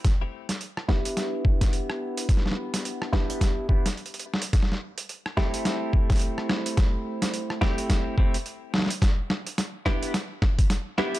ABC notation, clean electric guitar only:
X:1
M:4/4
L:1/8
Q:"Swing 16ths" 1/4=107
K:Em
V:1 name="Clean electric guitar"
z3 [B,DEG]4- [B,DEG]- | [B,DEG]3 [B,DEG]2 [B,DEG] z2 | z3 [A,CEG]4- [A,CEG]- | [A,CEG]3 [A,CEG]2 [A,CEG] z2 |
z3 [B,DEG] z3 [B,DEG] |]